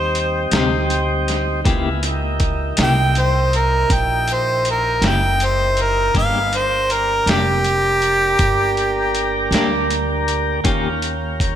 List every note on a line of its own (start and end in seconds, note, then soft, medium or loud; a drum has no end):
0.00 0.49 D#2 medium
0.00 1.61 G3 medium
0.00 1.61 C4 medium
0.00 1.61 D#4 medium
0.00 1.61 G4 medium
0.00 0.51 C5 medium
0.15 closed hi-hat medium
0.51 1.61 D2 medium
0.51 0.76 C3 medium
0.51 0.76 C4 medium
0.51 0.75 D#4 medium
0.51 0.75 G4 medium
0.51 snare medium
0.51 closed hi-hat medium
0.90 closed hi-hat soft
1.28 snare soft
1.28 closed hi-hat soft
1.65 2.74 C#2 medium
1.65 1.87 C#3 medium
1.65 1.88 A#3 medium
1.65 2.04 B3 medium
1.65 1.88 E4 medium
1.65 2.04 E4 medium
1.65 2.04 F4 medium
1.65 1.88 G4 medium
1.65 2.04 G#4 medium
1.65 kick loud
1.65 closed hi-hat medium
2.03 6.12 A#3 medium
2.03 6.12 D#4 medium
2.03 6.12 E4 medium
2.03 6.12 G4 medium
2.03 closed hi-hat medium
2.40 kick medium
2.40 closed hi-hat medium
2.77 3.87 C2 medium
2.77 3.01 C#3 soft
2.77 3.01 A#3 medium
2.77 3.00 E4 medium
2.77 3.00 G4 medium
2.77 snare loud
2.77 closed hi-hat medium
2.83 3.22 G5 medium
3.15 closed hi-hat soft
3.20 3.58 C5 medium
3.53 3.95 A#4 medium
3.53 closed hi-hat medium
3.90 4.99 A#1 medium
3.90 4.35 G5 medium
3.90 kick medium
3.90 closed hi-hat medium
4.28 closed hi-hat soft
4.33 4.67 C5 medium
4.65 closed hi-hat soft
4.71 5.09 A#4 medium
5.02 6.11 F#1 medium
5.02 5.26 C#3 soft
5.02 5.26 A#3 medium
5.02 5.25 E4 medium
5.02 5.25 G4 medium
5.02 snare medium
5.02 closed hi-hat medium
5.07 5.47 G5 medium
5.40 closed hi-hat medium
5.45 5.83 C5 medium
5.77 closed hi-hat medium
5.82 6.16 A#4 medium
6.14 7.24 G1 medium
6.14 6.37 G3 medium
6.14 6.38 A#3 medium
6.14 6.53 B3 medium
6.14 6.38 D4 medium
6.14 6.53 D#4 medium
6.14 6.38 G4 medium
6.14 6.53 G#4 medium
6.14 6.53 B4 medium
6.14 6.59 F5 medium
6.14 kick loud
6.14 closed hi-hat medium
6.52 10.60 A#3 medium
6.52 10.60 D4 medium
6.52 10.61 G4 medium
6.52 10.61 A#4 medium
6.52 closed hi-hat medium
6.57 6.94 C5 medium
6.90 7.32 A#4 medium
6.90 closed hi-hat medium
7.26 8.36 F1 medium
7.26 7.50 G3 soft
7.26 7.50 A#3 medium
7.26 7.50 D4 medium
7.26 7.50 G4 medium
7.26 snare loud
7.26 closed hi-hat medium
7.30 9.50 G4 loud
7.64 closed hi-hat soft
8.02 closed hi-hat soft
8.39 9.49 G1 medium
8.39 kick medium
8.39 closed hi-hat medium
8.77 closed hi-hat soft
9.15 closed hi-hat medium
9.51 10.60 D2 medium
9.51 9.75 G3 medium
9.51 9.75 A#3 medium
9.51 9.74 D4 medium
9.51 9.74 G4 medium
9.51 snare medium
9.51 closed hi-hat medium
9.90 closed hi-hat medium
10.28 closed hi-hat medium
10.64 11.56 D#2 medium
10.64 10.87 D#3 medium
10.64 10.87 A#3 medium
10.64 10.87 C#4 medium
10.64 11.56 C#4 medium
10.64 11.56 F4 medium
10.64 11.56 G4 medium
10.64 10.88 G4 medium
10.64 11.56 A#4 medium
10.64 kick loud
10.64 closed hi-hat medium
11.02 closed hi-hat medium
11.40 kick medium
11.40 closed hi-hat medium